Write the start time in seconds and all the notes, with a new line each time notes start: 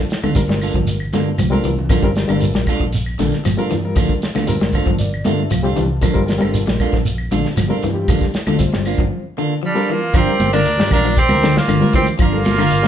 Already playing: A4
0.09 muted fingered electric bass stroke, snare, closed hi-hat, shekere
0.23 D2 D3 D4 F4 A4, closed hi-hat, high conga, claves
0.35 G3 C4 F4 A#4, kick, closed hi-hat, high conga, shekere
0.48 G1 G3, snare, high conga
0.61 A#3 D4 F4 A4, open hi-hat, claves, shekere
0.74 G1 F3, kick, closed hi-hat, high conga, low conga
0.87 closed hi-hat, high conga, shekere
1.00 claves
1.13 G2 D3 A#3 D4 F4 A4, snare, closed hi-hat, high conga, shekere
1.38 C2 F3, closed hi-hat, high conga, claves, shekere
1.50 G3 C4 D4 F4 A4 A#4, high conga
1.63 C2 E3, closed hi-hat, shekere
1.79 low conga
1.89 G1 F3 G3 A#3 C4 D4 F4 A4 A#4, kick, closed hi-hat, high conga, low conga, claves, shekere
2.02 G3 C4 F4 A#4, kick, closed hi-hat
2.16 G3 C4 F4 A#4, snare, closed hi-hat, shekere
2.28 G1 D3 G3 C4 D4 F4 A4 A#4, closed hi-hat, high conga, claves
2.41 closed hi-hat, high conga, shekere
2.54 A#1 G3, snare, closed hi-hat, high conga
2.67 A#3 D4 F4 A4, kick, snare, closed hi-hat, claves, shekere
2.80 A#1, muted clean electric guitar stroke, kick
2.93 closed hi-hat, high conga, shekere
3.06 claves
3.19 A#1 D3 A#3 D4 A4, snare, closed hi-hat, high conga, shekere
3.32 snare, closed hi-hat
3.45 G1 F3, snare, closed hi-hat, high conga, claves, shekere
3.57 G3 C4 D4 F4 A4 A#4
3.71 G2 E3, closed hi-hat, low conga, shekere
3.83 G3 C4 F4 A#4
3.96 D2 F3 A#3 D4 F4 A4, kick, closed hi-hat, high conga, low conga, claves, shekere
4.09 kick, closed hi-hat
4.22 muted fingered electric bass stroke, snare, closed hi-hat, shekere
4.35 D2 D3 D4 F4 A4, snare, closed hi-hat, high conga, claves
4.47 G3 C4 F4 A#4, closed hi-hat, high conga, shekere
4.61 G1 G3, snare, high conga
4.73 A#3 D4 F4 A4 C5, kick, closed hi-hat, claves, shekere
4.86 G1 F3, kick, closed hi-hat, high conga, low conga
4.99 D5, closed hi-hat, high conga, shekere
5.14 claves
5.25 G2 D3 A#3 D4 F4 A4 E5, closed hi-hat, high conga, shekere
5.50 C2 F3 F5, closed hi-hat, high conga, claves, shekere
5.63 G3 C4 D4 F4 G4 A4
5.75 C2 E3 A5, closed hi-hat, low conga, shekere
6.01 G1 F3 G3 A#3 C4 D4 F4 A4 A#4, muted clean electric guitar stroke, kick, closed hi-hat, high conga, low conga, claves, shekere
6.13 G3 C4 F4 A#4, kick, closed hi-hat
6.26 G3 C4 F4 A#4, snare, closed hi-hat, shekere
6.38 G3 C4 F4 A4 A#4, closed hi-hat, high conga, claves
6.43 G1 D4
6.54 closed hi-hat, high conga, shekere
6.67 A#1 G3, snare, closed hi-hat, high conga
6.80 A#3 D4 F4 A4, kick, closed hi-hat, claves, shekere
6.93 A#1 F3, kick, snare
7.05 closed hi-hat, high conga, shekere
7.18 claves
7.31 A#1 D3 D4 F4 A4, closed hi-hat, high conga, shekere
7.45 snare, closed hi-hat
7.57 G1 F3, snare, closed hi-hat, high conga, claves, shekere
7.68 G3 C4 D4 F4 A4 A#4, high conga
7.83 G2 E3, closed hi-hat, low conga, shekere
7.94 G3 C4 F4 G4
8.08 D2 F3 A#3 D4 F4 A4, kick, closed hi-hat, high conga, low conga, claves, shekere
8.21 kick, snare, closed hi-hat
8.34 muted fingered electric bass stroke, snare, closed hi-hat, shekere
8.47 D2 D3 D4 F4 A4, closed hi-hat, high conga, claves
8.58 G3 C4 F4 C5, kick, closed hi-hat, high conga, shekere
8.73 G1 G3, snare, high conga
8.85 A#3 D4 F4, open hi-hat, claves, shekere
8.98 G1 F3, kick, closed hi-hat, low conga
9.38 D3 A#3 D4 F4 A4
9.63 F3 G3 D4
9.74 G3 C4 D4 F4 A4 A#4
9.90 E3 A#3 F4
10.14 G1 F3 C4 D4 F4 A#4, kick, closed hi-hat, claves
10.18 G4
10.26 G3 C4 F4 A#4
10.40 G1, closed hi-hat, high conga
10.53 D3 D4 F4 A#4, claves
10.66 D2, closed hi-hat
10.77 G2 G3 C4 F4 A#4, snare
10.91 A#1 D4 F4 A#4, kick, closed hi-hat, high conga, low conga, claves
11.05 F3, closed hi-hat
11.17 C4 G4, kick, closed hi-hat
11.29 D2 G3 C4 F4 A#4, high conga, claves
11.43 D3, snare, closed hi-hat
11.57 A#3 F4, snare
11.68 G1 D3, closed hi-hat, high conga, claves
11.80 G3 C4 F4 A#4, high conga
11.93 D2 E3 C4 G4, kick, closed hi-hat, low conga
12.07 closed hi-hat
12.19 G1 F3 A#3 D4 F4 A#4, kick, closed hi-hat, claves
12.31 G3 C4 F4 A4
12.45 closed hi-hat, high conga
12.58 D3 F4 A#4, snare, claves
12.70 G1, closed hi-hat
12.83 G3 C4 F4 A#4, snare